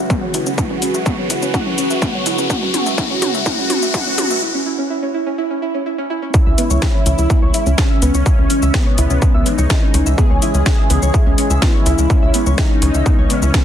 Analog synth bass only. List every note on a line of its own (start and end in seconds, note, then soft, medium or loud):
0.34 0.43 C#2 medium
0.46 0.54 C#2 medium
0.70 0.78 C#2 medium
0.94 1.02 C#2 medium
1.30 1.39 C#2 medium
1.42 1.50 C#2 medium
1.66 1.74 C#2 medium
1.90 1.98 C#2 medium
2.26 2.35 C#2 loud
2.38 2.46 C#2 medium
2.62 2.70 C#2 medium
2.86 2.94 C#2 medium
3.22 3.31 C#2 loud
3.34 3.42 C#2 medium
3.58 3.66 C#2 medium
3.82 3.90 C#2 medium
4.18 4.27 C#2 medium
4.30 4.38 C#2 medium
6.46 6.54 C#2 medium
6.70 6.78 C#2 medium
7.06 7.15 C#2 loud
7.18 7.27 C#2 medium
7.42 7.50 C#2 medium
7.66 7.74 C#2 medium
8.02 8.11 C#2 loud
8.14 8.22 C#2 medium
8.38 8.46 C#2 medium
8.62 8.70 C#2 medium
8.98 9.07 C#2 loud
9.10 9.19 C#2 medium
9.34 9.42 C#2 medium
9.58 9.66 C#2 medium
9.94 10.03 C#2 medium
10.06 10.14 C#2 medium
10.30 10.38 C#2 medium
10.54 10.62 C#2 medium
10.90 10.99 C#2 loud
11.02 11.10 C#2 medium
11.26 11.34 C#2 medium
11.50 11.58 C#2 medium
11.86 11.95 C#2 medium
11.98 12.06 C#2 medium
12.22 12.30 C#2 medium
12.46 12.54 C#2 medium
12.82 12.91 C#2 loud
12.94 13.02 C#2 medium
13.18 13.26 C#2 medium
13.42 13.50 C#2 medium